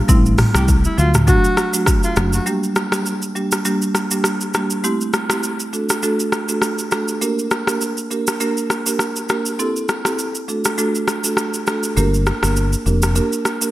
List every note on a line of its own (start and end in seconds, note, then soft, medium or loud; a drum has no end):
0.08 0.42 A1 loud
0.08 0.51 G3 medium
0.08 0.51 A3 medium
0.08 0.51 C4 medium
0.08 0.51 E4 loud
0.08 kick loud
0.08 shaker medium
0.26 shaker soft
0.38 cross-stick loud
0.38 mid tom loud
0.38 open hi-hat soft
0.38 shaker soft
0.54 0.86 C2 medium
0.54 0.95 G3 medium
0.54 0.95 A3 medium
0.54 0.95 C4 medium
0.54 0.95 E4 medium
0.54 0.67 G4 medium
0.54 cross-stick loud
0.54 shaker medium
0.68 kick medium
0.68 shaker medium
0.84 0.96 E4 medium
0.84 shaker medium
0.98 1.31 D2 medium
0.98 1.25 F#3 medium
0.98 1.25 A3 medium
0.98 1.26 D4 medium
0.98 1.12 F4 medium
0.98 1.26 F#4 medium
0.98 shaker medium
1.14 cross-stick medium
1.14 mid tom loud
1.14 shaker loud
1.27 1.70 F#3 medium
1.27 1.70 A3 medium
1.27 1.70 D4 medium
1.27 1.70 F#4 loud
1.27 1.71 F#4 loud
1.27 kick loud
1.27 shaker medium
1.44 shaker medium
1.57 cross-stick medium
1.57 shaker medium
1.73 1.89 F#3 medium
1.73 1.89 A3 medium
1.73 1.89 D4 medium
1.73 1.89 F#4 medium
1.73 shaker loud
1.86 kick loud
1.86 cross-stick medium
1.86 shaker medium
2.03 2.15 F4 medium
2.03 shaker medium
2.16 2.38 F#1 medium
2.16 2.34 F#3 medium
2.16 2.34 A3 medium
2.16 2.35 D4 medium
2.16 2.35 F#4 medium
2.16 cross-stick loud
2.16 shaker medium
2.33 2.45 F#4 medium
2.33 shaker medium
2.46 2.88 G3 medium
2.46 2.88 A#3 medium
2.46 2.89 D4 medium
2.46 2.89 G4 loud
2.46 shaker medium
2.63 shaker soft
2.76 cross-stick medium
2.76 shaker soft
2.92 3.32 G3 medium
2.92 3.32 A#3 medium
2.92 3.32 D4 medium
2.92 3.32 G4 medium
2.92 cross-stick loud
2.92 shaker medium
3.06 shaker medium
3.22 shaker soft
3.35 3.63 G3 medium
3.35 3.63 A#3 medium
3.35 3.63 D4 medium
3.35 3.63 G4 medium
3.35 shaker soft
3.52 cross-stick medium
3.52 shaker medium
3.65 4.07 G3 medium
3.65 4.07 A#3 medium
3.65 4.07 D4 medium
3.65 4.08 G4 medium
3.65 shaker medium
3.82 shaker medium
3.95 cross-stick medium
3.95 shaker medium
4.11 4.26 G3 medium
4.11 4.26 A#3 medium
4.11 4.27 D4 medium
4.11 4.27 G4 medium
4.11 shaker loud
4.24 cross-stick medium
4.24 shaker medium
4.41 shaker medium
4.54 4.72 G3 medium
4.54 4.72 A#3 medium
4.54 4.72 D4 medium
4.54 4.72 G4 medium
4.54 cross-stick medium
4.54 shaker medium
4.70 shaker medium
4.84 5.26 A3 medium
4.84 5.26 C4 medium
4.84 5.26 E4 medium
4.84 5.26 G4 loud
4.84 shaker medium
5.01 shaker soft
5.13 cross-stick medium
5.13 shaker soft
5.30 5.70 A3 medium
5.30 5.70 C4 medium
5.30 5.70 E4 medium
5.30 5.70 G4 medium
5.30 cross-stick loud
5.30 shaker medium
5.43 shaker medium
5.60 shaker medium
5.73 6.01 A3 medium
5.73 6.01 D4 medium
5.73 6.01 F#4 medium
5.73 6.01 A4 medium
5.73 shaker soft
5.89 cross-stick medium
5.89 shaker medium
6.03 6.45 A3 medium
6.03 6.45 D4 medium
6.03 6.45 F#4 medium
6.03 6.45 A4 loud
6.03 shaker medium
6.20 shaker medium
6.32 cross-stick medium
6.32 shaker medium
6.49 6.64 A3 medium
6.49 6.64 D4 medium
6.49 6.64 F#4 medium
6.49 6.64 A4 medium
6.49 shaker loud
6.62 cross-stick medium
6.62 shaker medium
6.79 shaker medium
6.91 7.10 A3 medium
6.91 7.10 D4 medium
6.91 7.10 F#4 medium
6.91 7.10 A4 medium
6.91 cross-stick medium
6.91 shaker medium
7.08 shaker medium
7.21 7.64 A#3 medium
7.21 7.64 D4 medium
7.21 7.64 G4 medium
7.21 7.64 A#4 loud
7.21 shaker medium
7.39 shaker soft
7.51 cross-stick medium
7.51 shaker soft
7.67 8.08 A#3 medium
7.67 8.08 D4 medium
7.67 8.08 G4 medium
7.67 8.08 A#4 medium
7.67 cross-stick medium
7.67 shaker medium
7.81 shaker medium
7.97 shaker medium
8.11 8.38 A#3 medium
8.11 8.38 D4 medium
8.11 8.38 G4 medium
8.11 8.39 A#4 medium
8.11 shaker soft
8.27 cross-stick medium
8.27 shaker medium
8.40 8.82 A#3 medium
8.40 8.83 D4 medium
8.40 8.83 G4 medium
8.40 8.83 A#4 loud
8.40 shaker medium
8.57 shaker medium
8.70 cross-stick medium
8.70 shaker medium
8.86 9.02 A#3 medium
8.86 9.02 D4 medium
8.86 9.02 G4 medium
8.86 9.02 A#4 medium
8.86 shaker loud
8.99 cross-stick medium
8.99 shaker medium
9.16 shaker medium
9.29 9.47 A#3 medium
9.29 9.47 D4 medium
9.29 9.48 G4 medium
9.29 9.48 A#4 medium
9.29 cross-stick medium
9.29 shaker medium
9.46 shaker medium
9.59 10.01 C4 medium
9.59 10.01 E4 medium
9.59 10.02 G4 medium
9.59 10.02 A4 loud
9.59 shaker medium
9.76 shaker soft
9.89 cross-stick medium
9.89 shaker soft
10.05 10.45 C4 medium
10.05 10.45 E4 medium
10.05 10.45 G4 medium
10.05 10.45 A4 medium
10.05 cross-stick medium
10.05 shaker medium
10.19 shaker medium
10.35 shaker medium
10.48 10.76 A3 medium
10.48 10.76 D4 medium
10.48 10.76 F#4 medium
10.48 10.76 A4 medium
10.48 shaker soft
10.65 cross-stick medium
10.65 shaker medium
10.78 11.20 A3 medium
10.78 11.20 D4 medium
10.78 11.20 F#4 medium
10.78 11.20 A4 loud
10.78 shaker medium
10.95 shaker medium
11.08 cross-stick medium
11.08 shaker medium
11.24 11.39 A3 medium
11.24 11.39 D4 medium
11.24 11.39 F#4 medium
11.24 11.40 A4 medium
11.24 shaker loud
11.37 cross-stick medium
11.37 shaker medium
11.54 shaker medium
11.67 11.85 A3 medium
11.67 11.85 D4 medium
11.67 11.85 F#4 medium
11.67 11.85 A4 medium
11.67 cross-stick medium
11.67 shaker medium
11.83 shaker medium
11.97 12.30 G1 loud
11.97 12.39 A#3 medium
11.97 12.39 D4 medium
11.97 12.39 G4 medium
11.97 12.39 A#4 loud
11.97 shaker medium
12.14 shaker soft
12.26 cross-stick medium
12.26 shaker soft
12.43 12.74 G1 medium
12.43 12.83 A#3 medium
12.43 12.83 D4 medium
12.43 12.83 G4 medium
12.43 12.83 A#4 medium
12.43 cross-stick medium
12.43 shaker medium
12.56 shaker medium
12.73 shaker medium
12.86 13.19 F1 medium
12.86 13.14 A#3 medium
12.86 13.14 D4 medium
12.86 13.14 G4 medium
12.86 13.14 A#4 medium
12.86 shaker soft
13.02 cross-stick medium
13.02 shaker medium
13.15 13.58 A#3 medium
13.15 13.58 D4 medium
13.15 13.58 G4 medium
13.15 13.58 A#4 loud
13.15 shaker medium
13.33 shaker medium
13.45 cross-stick medium
13.45 shaker medium
13.62 13.71 A#3 medium
13.62 13.71 D4 medium
13.62 13.71 G4 medium
13.62 13.71 A#4 medium
13.62 shaker loud